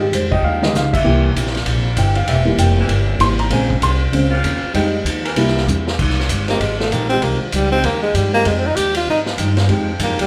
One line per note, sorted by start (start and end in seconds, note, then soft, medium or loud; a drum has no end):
0.00 0.11 G#2 medium
0.00 0.60 D#3 soft
0.00 0.61 G3 soft
0.00 0.61 G#3 medium
0.00 0.12 G4 medium
0.12 0.42 F2 medium
0.12 0.33 F3 medium
0.12 0.34 G#3 medium
0.12 0.34 D#4 medium
0.12 0.34 G4 medium
0.12 0.32 C5 medium
0.12 hi-hat pedal medium
0.12 ride medium
0.31 0.72 F3 medium
0.31 0.72 D#4 medium
0.31 0.72 G4 loud
0.31 0.43 D#5 medium
0.31 kick medium
0.42 0.73 D#2 medium
0.42 0.64 F3 soft
0.42 0.64 G#3 soft
0.42 0.64 D#4 medium
0.42 0.65 G4 soft
0.42 0.62 F5 medium
0.61 0.73 D#3 soft
0.61 0.73 G3 soft
0.61 0.73 G#3 soft
0.61 0.74 D#5 medium
0.61 snare medium
0.73 1.04 C#2 medium
0.73 0.94 F3 medium
0.73 0.95 G#3 medium
0.73 0.95 D#4 medium
0.73 0.95 G4 medium
0.73 0.94 F5 medium
0.73 snare medium
0.73 hi-hat pedal medium
0.93 1.22 E5 medium
0.93 kick medium
0.93 crash medium
1.04 1.34 C2 medium
1.04 1.25 C3 soft
1.04 1.27 E3 soft
1.04 1.51 E3 medium
1.04 1.27 G3 soft
1.04 1.51 A#3 medium
1.04 1.27 A#3 medium
1.04 1.26 A#3 medium
1.04 1.51 C4 medium
1.04 1.26 E4 soft
1.04 1.50 G4 medium
1.04 1.27 G4 medium
1.35 1.65 A#1 medium
1.35 1.56 C3 medium
1.35 1.56 A#3 medium
1.35 1.56 E4 medium
1.35 1.57 G4 medium
1.35 hi-hat pedal medium
1.35 ride medium
1.46 snare soft
1.55 snare soft
1.55 ride soft
1.66 1.96 A#1 loud
1.66 1.87 C3 medium
1.66 1.87 A#3 medium
1.66 1.87 E4 medium
1.66 1.88 G4 medium
1.66 ride medium
1.97 2.26 G1 loud
1.97 2.17 C3 medium
1.97 2.27 E3 medium
1.97 2.26 A#3 medium
1.97 2.18 A#3 medium
1.97 2.27 C4 medium
1.97 2.18 E4 medium
1.97 2.26 G4 medium
1.97 2.18 G4 medium
1.97 2.16 G5 medium
1.97 hi-hat pedal medium
1.97 ride medium
2.15 2.28 F5 medium
2.15 ride soft
2.27 2.57 E1 medium
2.27 2.49 C3 medium
2.27 2.41 E3 medium
2.27 2.41 A#3 medium
2.27 2.49 A#3 medium
2.27 2.41 C4 medium
2.27 2.49 E4 medium
2.27 2.41 G4 medium
2.27 2.49 G4 medium
2.27 2.57 E5 medium
2.27 ride medium
2.45 3.18 E3 medium
2.45 3.18 G3 soft
2.45 3.18 A#3 medium
2.57 2.88 F1 medium
2.57 2.79 C3 medium
2.57 2.80 A#3 medium
2.57 2.80 E4 medium
2.57 2.80 G4 medium
2.57 2.88 G5 medium
2.57 hi-hat pedal medium
2.57 ride medium
2.79 3.19 E3 loud
2.79 3.19 A#3 medium
2.79 3.19 C4 loud
2.79 3.19 E4 loud
2.88 3.18 G1 medium
2.88 3.10 C3 soft
2.88 3.11 A#3 medium
2.88 3.11 E4 soft
2.88 ride medium
2.93 3.11 G4 medium
3.19 3.50 G#1 loud
3.19 3.41 C3 medium
3.19 3.37 E3 soft
3.19 3.37 G3 soft
3.19 3.37 A#3 soft
3.19 3.41 A#3 medium
3.19 3.41 E4 medium
3.19 3.42 G4 medium
3.19 3.39 C6 loud
3.19 hi-hat pedal soft
3.19 ride medium
3.39 3.51 A#5 medium
3.39 ride soft
3.50 3.80 A#1 loud
3.50 3.73 C#3 soft
3.50 3.97 C#3 medium
3.50 3.74 G#3 soft
3.50 3.71 A#3 medium
3.50 3.97 A#3 medium
3.50 3.97 C4 medium
3.50 3.74 C4 medium
3.50 3.72 C#4 medium
3.50 3.97 G#4 medium
3.50 3.72 G#4 medium
3.50 3.72 C5 medium
3.50 3.81 G#5 medium
3.50 ride medium
3.70 kick medium
3.80 4.11 C2 medium
3.80 4.02 A#3 medium
3.80 4.02 C#4 medium
3.80 4.03 G#4 medium
3.80 4.03 C5 medium
3.80 4.11 C6 medium
3.80 hi-hat pedal medium
3.80 ride medium
4.12 4.43 C#2 loud
4.12 4.30 C#3 soft
4.12 4.30 G#3 soft
4.12 4.33 A#3 soft
4.12 4.30 C4 medium
4.12 4.33 C#4 soft
4.12 4.33 G#4 medium
4.12 4.34 C5 medium
4.12 ride medium
4.30 4.72 C#3 loud
4.30 4.72 A#3 loud
4.30 4.72 C4 loud
4.30 4.72 F4 loud
4.44 4.61 D#2 loud
4.44 4.64 A#3 medium
4.44 4.65 C#4 medium
4.44 4.65 G#4 medium
4.44 4.65 C5 medium
4.44 hi-hat pedal soft
4.44 ride medium
4.63 muted upright bass stroke soft
4.74 5.04 F2 medium
4.74 4.88 F3 medium
4.74 4.95 F3 medium
4.74 4.97 G3 soft
4.74 4.87 G#3 medium
4.74 4.97 G#3 soft
4.74 4.96 G#3 medium
4.74 4.87 D#4 medium
4.74 4.98 D#4 medium
4.74 4.96 D#4 medium
4.74 4.87 G4 loud
4.74 4.96 G4 medium
4.74 ride medium
5.05 5.35 D#2 loud
5.05 5.26 F3 medium
5.05 5.26 G#3 medium
5.05 5.27 D#4 medium
5.05 5.27 G4 medium
5.05 hi-hat pedal medium
5.05 ride medium
5.24 5.65 E3 loud
5.24 5.65 A#3 medium
5.24 5.65 C4 medium
5.24 5.65 A#4 loud
5.24 ride medium
5.36 5.66 C2 loud
5.36 5.57 C3 medium
5.36 5.59 G3 medium
5.36 5.59 A#3 soft
5.36 5.57 A#3 medium
5.36 5.60 E4 medium
5.36 5.58 E4 medium
5.36 5.58 G4 medium
5.36 ride medium
5.47 snare soft
5.57 snare soft
5.67 5.97 E2 loud
5.67 5.88 C3 medium
5.67 5.88 A#3 medium
5.67 5.88 E4 medium
5.67 5.89 G4 medium
5.67 hi-hat pedal medium
5.67 high tom soft
5.87 snare medium
5.99 6.29 C2 medium
5.99 6.19 F3 medium
5.99 6.20 G#3 medium
5.99 6.20 D#4 medium
5.99 6.20 G4 medium
5.99 kick medium
5.99 crash medium
6.10 snare soft
6.20 snare soft
6.29 6.59 G1 medium
6.29 6.50 F3 medium
6.29 6.50 G#3 medium
6.29 6.50 D#4 medium
6.29 6.51 G4 medium
6.29 hi-hat pedal medium
6.29 ride medium
6.48 6.59 F3 medium
6.48 6.59 G#3 medium
6.48 6.62 A#3 medium
6.48 6.59 C4 medium
6.48 6.59 D#4 medium
6.48 6.60 G4 medium
6.48 snare soft
6.48 ride medium
6.60 6.90 G#1 medium
6.60 6.81 F3 soft
6.60 6.78 G#3 medium
6.60 6.81 G#3 medium
6.60 6.82 D#4 soft
6.60 6.82 G4 medium
6.60 ride medium
6.79 6.94 A3 medium
6.79 snare medium
6.91 7.21 A#1 medium
6.91 7.04 F3 medium
6.91 7.12 F3 medium
6.91 7.04 G#3 medium
6.91 7.12 G#3 medium
6.91 7.09 A#3 medium
6.91 7.04 D#4 medium
6.91 7.12 D#4 medium
6.91 7.04 G4 medium
6.91 7.12 G4 medium
6.91 hi-hat pedal medium
6.91 ride medium
7.09 7.50 F3 medium
7.09 7.51 G#3 medium
7.09 7.25 C4 loud
7.09 7.51 C4 medium
7.09 7.51 D#4 medium
7.09 7.51 G4 medium
7.09 ride soft
7.22 7.39 C2 medium
7.22 7.42 F3 medium
7.22 7.43 G#3 medium
7.22 7.41 A#3 medium
7.22 7.43 D#4 soft
7.22 7.43 G4 medium
7.22 ride medium
7.40 7.56 D#3 medium
7.40 muted upright bass stroke soft
7.52 7.82 C#2 medium
7.52 7.73 F3 medium
7.52 7.71 G3 medium
7.52 7.73 G#3 medium
7.52 7.74 D#4 medium
7.52 7.74 G4 medium
7.52 hi-hat pedal medium
7.52 ride medium
7.71 7.82 F3 medium
7.71 8.13 F3 loud
7.71 7.82 G#3 medium
7.71 8.13 G#3 medium
7.71 7.87 C4 loud
7.71 7.82 C4 medium
7.71 7.83 D#4 medium
7.71 8.13 D#4 medium
7.71 7.83 G4 medium
7.71 8.13 G4 loud
7.83 8.13 D#2 medium
7.83 8.04 F3 soft
7.83 8.04 G#3 soft
7.83 8.02 A#3 medium
7.83 8.05 D#4 soft
7.83 8.05 G4 medium
7.83 ride medium
8.03 8.17 G#3 loud
8.14 8.44 G2 loud
8.14 8.34 F3 medium
8.14 8.33 G3 medium
8.14 8.35 G#3 medium
8.14 8.35 D#4 medium
8.14 8.35 G4 medium
8.14 hi-hat pedal soft
8.14 ride medium
8.33 8.73 F3 medium
8.33 8.74 G#3 medium
8.33 8.49 A#3 loud
8.33 8.74 C4 medium
8.33 8.74 D#4 medium
8.33 8.74 G4 medium
8.45 8.75 F2 loud
8.45 8.65 F3 soft
8.45 8.66 G#3 soft
8.45 8.59 G#3 medium
8.45 8.66 D#4 medium
8.45 ride medium
8.58 8.68 C4 medium
8.67 8.77 D#4 medium
8.76 9.06 D#2 medium
8.76 8.97 F3 medium
8.76 8.97 G#3 medium
8.76 8.97 D#4 medium
8.76 8.95 G4 loud
8.76 8.97 G4 medium
8.76 hi-hat pedal medium
8.76 ride medium
8.94 9.07 F4 medium
8.94 ride medium
9.07 9.37 G#2 medium
9.07 9.27 F3 medium
9.07 9.28 G#3 soft
9.07 9.28 D#4 soft
9.07 9.21 D#4 medium
9.07 9.29 G4 medium
9.26 snare medium
9.37 9.67 G2 loud
9.37 9.58 F3 medium
9.37 9.51 F3 medium
9.37 9.51 G#3 medium
9.37 9.59 G#3 medium
9.37 9.51 D#4 medium
9.37 9.59 D#4 medium
9.37 9.51 G4 medium
9.37 9.59 G4 medium
9.37 hi-hat pedal medium
9.37 ride medium
9.57 snare medium
9.57 ride soft
9.67 9.98 F2 medium
9.67 9.85 F3 medium
9.67 10.27 F3 medium
9.67 9.89 F3 medium
9.67 9.85 G#3 medium
9.67 10.27 G#3 medium
9.67 9.90 G#3 medium
9.67 9.86 C4 medium
9.67 10.27 D#4 medium
9.67 9.86 D#4 medium
9.67 10.27 G4 loud
9.67 9.86 G4 medium
9.67 ride medium
9.71 9.90 D#4 medium
9.71 9.90 G4 medium
9.99 10.09 G2 medium
9.99 10.20 F3 medium
9.99 10.20 G#3 medium
9.99 10.19 A#3 medium
9.99 10.20 D#4 medium
9.99 10.21 G4 medium
9.99 hi-hat pedal medium
9.99 ride medium
10.09 10.19 F2 medium
10.19 10.27 D#2 medium
10.19 10.27 G3 medium
10.19 ride medium